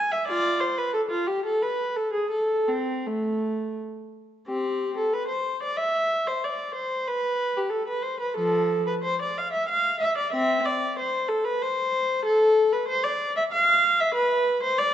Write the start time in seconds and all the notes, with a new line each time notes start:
Already playing: G#5
0.11 E5
0.27 F4 D5
0.60 C5
0.78 B4
0.94 A4
1.10 F4
1.27 G4
1.46 A4
1.63 B4
1.96 A4
2.13 G#4
2.31 A4
2.68 C4
3.07 A3
4.47 C4 G4
4.98 A4
5.13 B4
5.28 C5
5.63 D5
5.77 E5
6.27 C5
6.44 D5
6.75 C5
7.07 B4
7.57 G4
7.70 A4
7.88 B4
8.03 C5
8.20 B4
8.36 F3 A4
8.86 B4
9.03 C5
9.22 D5
9.38 F5
9.52 E5
9.69 F5
10.00 E5
10.18 D5
10.32 C4 E5
10.65 D5
10.99 C5
11.29 A4
11.45 B4
11.62 C5
12.26 A4
12.73 B4
12.88 C5
13.04 D5
13.36 E5
13.52 F5
14.00 E5
14.14 B4
14.63 C5
14.79 D5